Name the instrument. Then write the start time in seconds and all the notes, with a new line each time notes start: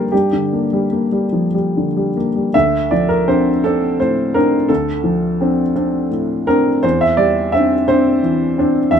upright piano
Already playing: D3 G3 A#3 A#4 C5 D5
0.12 G2 G4
0.33 D3
0.53 A#3
0.73 G3
0.92 A#3
1.12 G3
1.33 F3
1.54 G3
1.77 D3
1.97 G3
2.17 A#3
2.36 G3
2.54 D2 E5
2.91 F3 D5
3.09 A#4
3.28 C4 D4 C5
3.64 C4 D4 A4
4.00 A2 C5
4.34 C4 D4 A#4
4.69 D2 A4
5.04 F3
5.41 C4 D4
5.76 C4 D4
6.11 A2
6.47 C4 D4 A#4
6.83 E2 C5
7.01 E5
7.17 G3 D5
7.52 C4 D4 E5
7.88 C4 D4 C5
8.23 E3
8.58 C4 D4
8.91 E2 E5